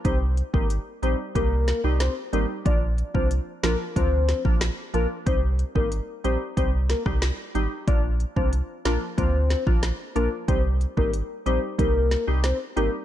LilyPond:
<<
  \new Staff \with { instrumentName = "Soft synth lead" } { \time 4/4 \key c \minor \tempo 4 = 92 c''16 r8 bes'16 r8 c''16 r16 bes'8. r16 c''16 r16 bes'16 r16 | d''16 r8 c''16 r8 bes'16 r16 c''8. r8. bes'16 r16 | c''16 r8 bes'16 r8 c''16 r16 c''16 r16 bes'16 r4 r16 | d''16 r8 c''16 r8 bes'16 r16 c''8. r8. bes'16 r16 |
c''16 r8 bes'16 r8 c''16 r16 bes'8. r16 c''16 r16 bes'16 r16 | }
  \new Staff \with { instrumentName = "Synth pluck" } { \time 4/4 \key c \minor <g c' ees' g'>16 r8 <g c' ees' g'>16 r8 <g c' ees' g'>16 r16 <g c' ees' g'>16 r8 <g c' ees' g'>16 r8 <g c' ees' g'>16 r16 | <f bes d' f'>16 r8 <f bes d' f'>16 r8 <f bes d' f'>16 r16 <f bes d' f'>8. <f bes d' f'>16 r8 <f bes d' f'>16 r16 | <g c' ees' g'>16 r8 <g c' ees' g'>16 r8 <g c' ees' g'>16 r16 <g c' ees' g'>16 r8 <g c' ees' g'>16 r8 <g c' ees' g'>16 r16 | <f bes d' f'>16 r8 <f bes d' f'>16 r8 <f bes d' f'>16 r16 <f bes d' f'>8. <f bes d' f'>16 r8 <f bes d' f'>16 r16 |
<g c' ees' g'>16 r8 <g c' ees' g'>16 r8 <g c' ees' g'>16 r16 <g c' ees' g'>16 r8 <g c' ees' g'>16 r8 <g c' ees' g'>16 r16 | }
  \new Staff \with { instrumentName = "Sub bass" } { \clef bass \time 4/4 \key c \minor c,8. aes,,8 r16 bes,,16 r16 c,8. c,8 r16 aes,,16 r16 | bes,,8. c,8 r16 bes,,16 r16 d,8. bes,,8 r16 bes,,16 r16 | c,8. aes,,8 r16 bes,,16 r16 c,8. c,8 r16 aes,,16 r16 | bes,,8. c,8 r16 bes,,16 r16 d,8. bes,,8 r16 bes,,16 r16 |
c,8. aes,,8 r16 bes,,16 r16 c,8. c,8 r16 aes,,16 r16 | }
  \new DrumStaff \with { instrumentName = "Drums" } \drummode { \time 4/4 <hh bd>8 hh16 bd16 hh8 hh8 <hh bd>8 <hh sn>8 <hh sn>8 hh8 | <hh bd>8 hh16 bd16 hh8 <hh sn>8 <hh bd>8 <hh sn>16 bd16 <hh sn>8 hh8 | <hh bd>8 hh16 bd16 hh8 hh8 <hh bd>8 <hh sn>16 <bd ss>16 <hh sn>8 hh8 | <hh bd>8 hh16 bd16 hh8 <hh sn>8 <hh bd>8 <hh sn>16 bd16 <hh sn>8 hh8 |
<hh bd>8 hh16 bd16 hh8 hh8 <hh bd>8 <hh sn>8 <hh sn>8 hh8 | }
>>